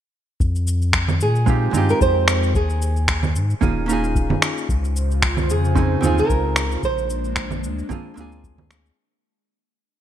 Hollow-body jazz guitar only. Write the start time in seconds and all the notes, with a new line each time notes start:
1.46 G#3 C4 D#4 F4 G4
1.71 G#3 C4 D#4
1.76 F4 G4
3.61 A#3 C#4 D#4 F4 G#4
3.86 A#3 C#4 D#4
3.91 F4 G#4
5.75 C4 C#4 D#4 G#4
6.01 C4 D#4
6.05 F4 G#4
7.89 A#3 C4 D4 F4 G#4
8.14 A#3 C4 D4
8.19 F4 G#4